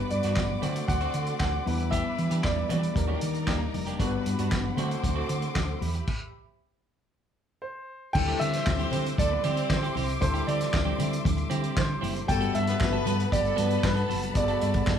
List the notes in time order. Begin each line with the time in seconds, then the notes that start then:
Already playing: G3 B3 D4 F#4 B4 F#5 B5 D6
0.10 G2 D5, muted clean electric guitar stroke, closed hi-hat
0.23 G2 B3 D4 F#4, snare, closed hi-hat
0.36 G1, muted clean electric guitar stroke, kick, snare, clap, muted conga
0.50 muted clean electric guitar stroke, muted conga, high conga
0.62 D3 A3 C4 D4 F#4 A4 C5 D5 C6, closed hi-hat, high conga, low conga
0.76 muted clean electric guitar stroke, closed hi-hat
0.88 D2 F#5, kick, closed hi-hat, muted conga, high conga
1.00 A3 C4 F#4, closed hi-hat
1.14 D3, muted clean electric guitar stroke, closed hi-hat
1.26 muted clean electric guitar stroke, closed hi-hat
1.40 D2 F#5, muted clean electric guitar stroke, kick, snare, clap, muted conga, high conga
1.52 muted clean electric guitar stroke, muted conga
1.65 E2 G3 B3 D4 E4 B4 E5 B5, open hi-hat, high conga, low conga
1.79 muted clean electric guitar stroke, closed hi-hat
1.91 B3 D4 G4 E5, kick, closed hi-hat
2.04 muted clean electric guitar stroke, muted conga
2.18 E3, muted clean electric guitar stroke, closed hi-hat
2.31 E3 B3 D4 G4, closed hi-hat
2.44 E2 D5, muted clean electric guitar stroke, kick, snare, clap
2.57 muted clean electric guitar stroke, high conga
2.69 E3 B3 D4 G4 D5, closed hi-hat, high conga, low conga
2.82 muted clean electric guitar stroke, closed hi-hat
2.94 D#2 G3 A#3 D4 D#4 A#4 D5 A#5, muted clean electric guitar stroke, kick, closed hi-hat, high conga
3.08 A#3 D4 G4, muted conga
3.21 D#3, muted clean electric guitar stroke, closed hi-hat
3.34 muted clean electric guitar stroke, closed hi-hat
3.47 D#2 A#3 D4 G4, kick, snare, clap, muted conga, high conga
3.60 muted clean electric guitar stroke
3.73 F1, muted clean electric guitar stroke, open hi-hat, high conga, low conga
3.87 A#3 D4 G4, closed hi-hat
3.99 G1 G3 B3 D4 F#4 A4 B4 F#5 B5, kick, closed hi-hat
4.07 B4
4.13 muted clean electric guitar stroke
4.26 G2, muted clean electric guitar stroke, closed hi-hat
4.39 G2 B3 D4 F#4, closed hi-hat
4.52 G1, muted clean electric guitar stroke, kick, snare, clap
4.65 muted clean electric guitar stroke, high conga
4.77 D3 A3 C4 D4 F#4 A4 C5 C6 D6, closed hi-hat, high conga, low conga
4.90 muted clean electric guitar stroke, closed hi-hat
5.03 D2, muted clean electric guitar stroke, kick, closed hi-hat, high conga
5.16 A3 C4 F#4
5.29 D3, muted clean electric guitar stroke, closed hi-hat
5.42 muted clean electric guitar stroke, closed hi-hat
5.55 D2, muted clean electric guitar stroke, kick, snare, clap, muted conga, high conga
5.69 muted clean electric guitar stroke, muted conga
5.81 E2 G4 E5 B5, open hi-hat, high conga, low conga
5.95 muted clean electric guitar stroke, closed hi-hat
6.07 kick, crash
7.62 C5
8.13 D2 F#3 G3 A3 C4 D4 E4 A4 E5 G5 C6 D6, muted clean electric guitar stroke, kick, crash, low conga
8.20 G3
8.28 C4 E4 G4, muted conga
8.40 D3 C4 E4 G4 E5, closed hi-hat
8.53 C4 C5, muted clean electric guitar stroke, snare, closed hi-hat
8.66 D2 C4 C5, muted clean electric guitar stroke, kick, snare, clap, muted conga
8.79 C4 E4 G4, closed hi-hat, high conga
8.91 D3 C4 E4 G4, closed hi-hat, high conga, low conga
9.05 muted clean electric guitar stroke, closed hi-hat
9.18 D2 A3 A4 D5, muted clean electric guitar stroke, kick, closed hi-hat, muted conga, high conga
9.31 B3 B4, muted clean electric guitar stroke
9.43 D3 C4 E4 G4 C5, closed hi-hat, high conga
9.57 C4 E4 G4, closed hi-hat
9.70 D3 C5, muted clean electric guitar stroke, kick, snare, clap, high conga
9.83 C4 E4 G4, closed hi-hat
9.95 C2 C4 E4 G4, open hi-hat, high conga, low conga
10.08 muted clean electric guitar stroke, closed hi-hat
10.20 D2 G3 C4 D4 E4 A4 C5, muted clean electric guitar stroke, kick, closed hi-hat, muted conga, low conga
10.34 C4 E4 G4, closed hi-hat
10.47 D3 C4 E4 G4 D5, closed hi-hat
10.60 muted clean electric guitar stroke, snare, closed hi-hat
10.73 D2, muted clean electric guitar stroke, kick, snare, clap
10.85 C4 E4 G4, muted conga, high conga
10.98 D3 C4 E4 G4, closed hi-hat, high conga, low conga
11.12 muted clean electric guitar stroke, closed hi-hat
11.24 D2, muted clean electric guitar stroke, kick, closed hi-hat, high conga
11.37 muted clean electric guitar stroke, closed hi-hat, muted conga
11.50 D3 C4 E4 G4, closed hi-hat, high conga
11.63 C4 E4 G4, closed hi-hat
11.77 D3 C5, muted clean electric guitar stroke, kick, snare, clap, high conga
11.89 muted clean electric guitar stroke
12.01 F#1 C4 E4 G4, open hi-hat, high conga, low conga
12.15 muted clean electric guitar stroke, closed hi-hat
12.28 G1 G3 A3 B3 D4 F#4 A4 F#5 G5 A5 B5, muted clean electric guitar stroke, kick, closed hi-hat, low conga
12.40 B3 F#4 A4, closed hi-hat, muted conga
12.54 G2 B3 F#4 A4 E5, closed hi-hat
12.67 B3 B4, muted clean electric guitar stroke, snare, closed hi-hat
12.80 G1 B3 B4, muted clean electric guitar stroke, kick, snare, clap, muted conga
12.93 B3 F#4 A4, muted conga, high conga
13.05 G2 B3 F#4 A4, closed hi-hat, high conga, low conga
13.18 muted clean electric guitar stroke, closed hi-hat
13.31 G1 G3 G4 D5, muted clean electric guitar stroke, kick, closed hi-hat, muted conga, high conga
13.43 A3 A4, muted clean electric guitar stroke, closed hi-hat
13.56 G2 B3 F#4 A4 B4, closed hi-hat, high conga
13.69 B3 F#4 A4, closed hi-hat
13.82 G2 B4, muted clean electric guitar stroke, kick, snare, clap, high conga
13.95 B3 F#4 A4, closed hi-hat
14.08 F#1 B3 F#4 A4, open hi-hat, high conga, low conga
14.21 muted clean electric guitar stroke, closed hi-hat
14.34 G1 G3 B3 D4 F#4 G#4 D5, muted clean electric guitar stroke, kick, closed hi-hat, muted conga, low conga
14.43 A4
14.48 B3 F#4 A4, closed hi-hat, muted conga
14.60 G2 B3 F#4 A4 D5, closed hi-hat
14.74 muted clean electric guitar stroke, kick, closed hi-hat
14.87 G1, muted clean electric guitar stroke, kick, snare, clap